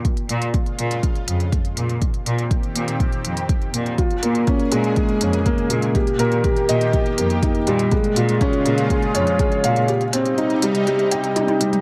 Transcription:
<<
  \new Staff \with { instrumentName = "Felt piano" } { \time 4/4 \key des \lydian \tempo 4 = 122 r1 | r1 | f'8 bes8 des'8 aes8 aes8 des'8 bes8 aes8 | g'8 bes'8 g'8 ees''8 g'8 bes8 ees'8 g8 |
aes8 f'8 des'8 aes8 aes'8 des''8 aes'8 f''8 | g'8 c'8 ees'8 g8 g8 g''8 ees'8 g8 | }
  \new Staff \with { instrumentName = "Analog synth pad" } { \clef bass \time 4/4 \key des \lydian << { <des f'>1 | <ees g'>1 | <des aes'>1 | <ees g'>1 |
<des f'>1 | <c ees'>1 | } \\ { aes1 | c'1 | bes1~ | bes1 |
aes1 | g1 | } >> }
  \new Staff \with { instrumentName = "Cello section" } { \clef bass \time 4/4 \key des \lydian r8 bes,8 r8 bes,8 r8 f,8 r8 bes,8 | r8 bes,8 r8 bes,8 r8 f,8 r8 bes,8 | r8 bes,8 r8 bes,8 r8 f,8 r8 bes,8 | r8 bes,8 r8 bes,8 r8 f,8 r8 bes,8 |
r8 bes,8 r8 bes,8 r8 f,8 r8 bes,8 | r1 | }
  \new DrumStaff \with { instrumentName = "Drums" } \drummode { \time 4/4 <hh bd>16 hh16 hh16 hh16 <hh bd>16 hh16 hh16 hh16 <hh bd>16 hh16 hh16 hh16 <hh bd>16 hh16 hh16 hh16 | <hh bd>16 hh16 hh16 hh16 <hh bd>16 hh16 hh16 hh16 <hh bd>16 hh16 hh16 hh16 <hh bd>16 hh16 hh16 hh16 | <hh bd>16 hh16 hh16 hh16 <hh bd>16 hh16 hh16 hh16 <hh bd>16 hh16 hh16 hh16 <hh bd>16 hh16 hh16 hh16 | <hh bd>16 hh16 hh16 hh16 <hh bd>16 hh16 hh16 hh16 <hh bd>16 hh16 hh16 hh16 <hh bd>16 hh16 hh16 hh16 |
<hh bd>16 hh16 hh16 hh16 <hh bd>16 hh16 hh16 hh16 <hh bd>16 hh16 hh16 hh16 <hh bd>16 hh16 hh16 hh16 | hh16 hh16 hh16 hh16 hh16 hh16 hh16 hh16 hh16 hh16 hh16 hh16 <hh tommh>16 <hh tommh>16 hh16 <hh toml>16 | }
>>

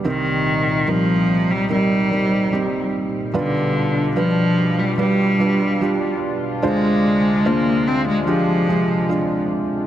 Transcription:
<<
  \new Staff \with { instrumentName = "Felt piano" } { \time 4/4 \key c \minor \tempo 4 = 73 <g c' ees' bes'>4 <g c' ees' bes'>4 <g c' ees' bes'>8 <g c' ees' bes'>8 <g c' ees' g'>4 | <g d' f' b'>4 <g d' f' b'>4 <g d' f' b'>8 <g d' f' b'>8 <g d' f' g'>4 | <aes d' f' c''>4 <aes d' f' c''>4 <aes d' f' g'>8 <aes d' f' aes'>8 <aes d' f' aes'>4 | }
  \new Staff \with { instrumentName = "Felt piano" } { \clef bass \time 4/4 \key c \minor <c, c>1 | <b,, b,>1 | <d, d>1 | }
  \new Staff \with { instrumentName = "Analog synth pad" } { \clef bass \time 4/4 \key c \minor << { <c' ees'>1 | <d' f'>1~ | <d' f'>1 | } \\ { <bes, g>1 | <b, g>1 | <c aes>1 | } >> }
  \new Staff \with { instrumentName = "Cello" } { \clef bass \time 4/4 \key c \minor ees4 f8. g16 g4. r8 | d4 f8. g16 g4. r8 | aes4 bes8 c'16 aes16 f4. r8 | }
>>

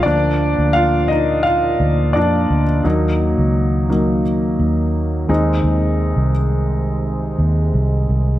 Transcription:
<<
  \new Staff \with { instrumentName = "Grand piano" } { \time 4/4 \key ees \minor \tempo 4 = 86 <d' d''>4 <f' f''>8 <ees' ees''>8 <f' f''>4 <d' d''>8. r16 | r1 | r1 | }
  \new Staff \with { instrumentName = "Grand piano" } { \time 4/4 \key ees \minor <f bes>1 | <ges bes ees'>4. <ges bes ees'>8 r4. <aes c' ees'>8~ | <aes c' ees'>4 r2. | }
  \new Staff \with { instrumentName = "Brass ensemble" } { \clef bass \time 4/4 \key ees \minor << { bes1~ | bes2.~ bes8 aes8~ | aes1 | } \\ { <bes, f>1 | <ees ges>2.~ <ees ges>8 c8~ | c1 | } >> }
  \new Staff \with { instrumentName = "Fingered electric bass" } { \clef bass \time 4/4 \key ees \minor d,8. d,4.~ d,16 d,8 f,8 d,8 | ees,8. des,4.~ des,16 ees,4 ees,8 | ees,8. c,4.~ c,16 ees,8 c,8 c,8 | }
>>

